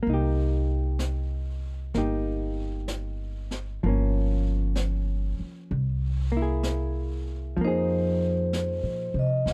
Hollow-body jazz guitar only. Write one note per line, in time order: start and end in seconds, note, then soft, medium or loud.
0.03 1.93 A#3 soft
0.10 1.96 D#4 soft
0.14 1.97 G4 soft
1.95 3.83 A#3 soft
1.95 3.84 D#4 soft
1.95 3.85 G4 soft
3.83 5.71 F3 soft
3.83 5.73 A#3 soft
3.88 5.74 C#4 soft
6.32 7.59 A#3 soft
6.37 7.61 E4 soft
6.42 7.64 G#4 soft
7.57 9.53 F3 soft
7.61 9.53 A#3 soft
7.61 9.53 D#4 soft
7.67 9.53 G#4 medium